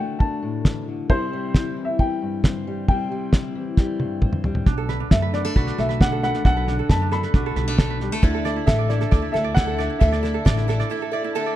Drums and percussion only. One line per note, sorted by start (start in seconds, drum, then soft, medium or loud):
0.20 kick medium
0.65 kick medium
0.65 snare medium
1.10 kick medium
1.54 kick medium
1.54 snare medium
1.99 kick medium
2.44 kick medium
2.44 snare medium
2.88 kick medium
3.33 kick medium
3.33 snare medium
3.77 kick medium
3.77 snare soft
4.00 high tom medium
4.22 kick medium
4.22 mid tom medium
4.33 mid tom medium
4.44 floor tom medium
4.55 floor tom medium
4.66 kick medium
4.66 snare soft
4.89 snare soft
5.11 kick medium
5.11 snare medium
5.34 snare soft
5.45 snare soft
5.56 kick medium
5.56 snare soft
5.67 snare soft
5.79 snare soft
5.90 snare soft
6.01 kick medium
6.01 snare loud
6.23 snare soft
6.34 snare soft
6.45 kick medium
6.45 snare soft
6.68 snare soft
6.89 kick medium
6.89 snare loud
7.12 snare soft
7.23 snare soft
7.34 kick medium
7.34 snare soft
7.56 snare soft
7.78 kick medium
7.78 snare loud
8.01 snare soft
8.23 kick loud
8.23 snare soft
8.45 snare soft
8.68 kick medium
8.68 snare loud
8.90 snare soft
9.01 snare soft
9.12 kick loud
9.12 snare soft
9.35 snare soft
9.57 kick medium
9.57 snare loud
9.79 snare soft
10.01 kick medium
10.01 snare soft
10.13 snare soft
10.24 snare soft
10.46 kick medium
10.46 snare loud
10.58 snare soft
10.69 snare soft
10.80 snare soft